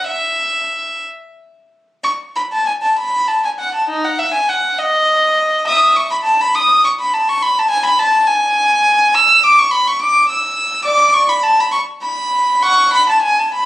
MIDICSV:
0, 0, Header, 1, 2, 480
1, 0, Start_track
1, 0, Tempo, 662252
1, 38, Time_signature, 6, 3, 24, 8
1, 1479, Tempo, 611621
1, 2919, Tempo, 590551
1, 5319, Tempo, 575816
1, 9159, Tempo, 610376
1, 10905, End_track
2, 0, Start_track
2, 0, Title_t, "Violin"
2, 0, Program_c, 0, 40
2, 50, Note_on_c, 0, 76, 72
2, 748, Note_off_c, 0, 76, 0
2, 1476, Note_on_c, 0, 85, 77
2, 1539, Note_off_c, 0, 85, 0
2, 1728, Note_on_c, 0, 83, 70
2, 1776, Note_off_c, 0, 83, 0
2, 1859, Note_on_c, 0, 81, 68
2, 1969, Note_on_c, 0, 80, 77
2, 1970, Note_off_c, 0, 81, 0
2, 2016, Note_off_c, 0, 80, 0
2, 2094, Note_on_c, 0, 81, 68
2, 2208, Note_off_c, 0, 81, 0
2, 2217, Note_on_c, 0, 83, 80
2, 2447, Note_off_c, 0, 83, 0
2, 2448, Note_on_c, 0, 81, 71
2, 2567, Note_off_c, 0, 81, 0
2, 2584, Note_on_c, 0, 80, 71
2, 2627, Note_off_c, 0, 80, 0
2, 2697, Note_on_c, 0, 78, 68
2, 2806, Note_off_c, 0, 78, 0
2, 2817, Note_on_c, 0, 81, 67
2, 2925, Note_off_c, 0, 81, 0
2, 2932, Note_on_c, 0, 63, 86
2, 3045, Note_off_c, 0, 63, 0
2, 3057, Note_on_c, 0, 78, 71
2, 3172, Note_off_c, 0, 78, 0
2, 3172, Note_on_c, 0, 76, 82
2, 3291, Note_off_c, 0, 76, 0
2, 3296, Note_on_c, 0, 80, 77
2, 3411, Note_off_c, 0, 80, 0
2, 3419, Note_on_c, 0, 78, 71
2, 3655, Note_off_c, 0, 78, 0
2, 3658, Note_on_c, 0, 75, 88
2, 4372, Note_off_c, 0, 75, 0
2, 4377, Note_on_c, 0, 76, 83
2, 4381, Note_on_c, 0, 87, 98
2, 4595, Note_off_c, 0, 76, 0
2, 4608, Note_off_c, 0, 87, 0
2, 4612, Note_on_c, 0, 85, 86
2, 4728, Note_off_c, 0, 85, 0
2, 4733, Note_on_c, 0, 83, 90
2, 4779, Note_off_c, 0, 83, 0
2, 4839, Note_on_c, 0, 81, 97
2, 4958, Note_off_c, 0, 81, 0
2, 4976, Note_on_c, 0, 83, 93
2, 5089, Note_off_c, 0, 83, 0
2, 5090, Note_on_c, 0, 87, 106
2, 5325, Note_off_c, 0, 87, 0
2, 5335, Note_on_c, 0, 85, 86
2, 5381, Note_off_c, 0, 85, 0
2, 5462, Note_on_c, 0, 83, 91
2, 5570, Note_off_c, 0, 83, 0
2, 5573, Note_on_c, 0, 81, 89
2, 5687, Note_off_c, 0, 81, 0
2, 5704, Note_on_c, 0, 85, 99
2, 5811, Note_off_c, 0, 85, 0
2, 5816, Note_on_c, 0, 83, 96
2, 5926, Note_off_c, 0, 83, 0
2, 5953, Note_on_c, 0, 81, 89
2, 6050, Note_on_c, 0, 80, 109
2, 6055, Note_off_c, 0, 81, 0
2, 6161, Note_off_c, 0, 80, 0
2, 6176, Note_on_c, 0, 83, 99
2, 6284, Note_on_c, 0, 81, 112
2, 6285, Note_off_c, 0, 83, 0
2, 6519, Note_on_c, 0, 80, 107
2, 6525, Note_off_c, 0, 81, 0
2, 7241, Note_off_c, 0, 80, 0
2, 7249, Note_on_c, 0, 88, 118
2, 7483, Note_off_c, 0, 88, 0
2, 7492, Note_on_c, 0, 86, 126
2, 7605, Note_off_c, 0, 86, 0
2, 7617, Note_on_c, 0, 85, 113
2, 7720, Note_on_c, 0, 83, 121
2, 7728, Note_off_c, 0, 85, 0
2, 7839, Note_off_c, 0, 83, 0
2, 7855, Note_on_c, 0, 85, 110
2, 7962, Note_on_c, 0, 86, 118
2, 7968, Note_off_c, 0, 85, 0
2, 8202, Note_off_c, 0, 86, 0
2, 8205, Note_on_c, 0, 88, 103
2, 8667, Note_on_c, 0, 86, 118
2, 8668, Note_on_c, 0, 74, 104
2, 8669, Note_off_c, 0, 88, 0
2, 8895, Note_off_c, 0, 74, 0
2, 8907, Note_off_c, 0, 86, 0
2, 8910, Note_on_c, 0, 85, 123
2, 9035, Note_off_c, 0, 85, 0
2, 9037, Note_on_c, 0, 83, 104
2, 9155, Note_on_c, 0, 81, 119
2, 9161, Note_off_c, 0, 83, 0
2, 9275, Note_off_c, 0, 81, 0
2, 9289, Note_on_c, 0, 83, 104
2, 9384, Note_on_c, 0, 85, 109
2, 9401, Note_off_c, 0, 83, 0
2, 9447, Note_off_c, 0, 85, 0
2, 9616, Note_on_c, 0, 83, 97
2, 10085, Note_off_c, 0, 83, 0
2, 10097, Note_on_c, 0, 85, 114
2, 10098, Note_on_c, 0, 78, 85
2, 10322, Note_off_c, 0, 78, 0
2, 10336, Note_on_c, 0, 83, 117
2, 10338, Note_off_c, 0, 85, 0
2, 10457, Note_off_c, 0, 83, 0
2, 10463, Note_on_c, 0, 81, 94
2, 10561, Note_on_c, 0, 80, 106
2, 10583, Note_off_c, 0, 81, 0
2, 10695, Note_off_c, 0, 80, 0
2, 10700, Note_on_c, 0, 81, 92
2, 10815, Note_on_c, 0, 83, 99
2, 10832, Note_off_c, 0, 81, 0
2, 10905, Note_off_c, 0, 83, 0
2, 10905, End_track
0, 0, End_of_file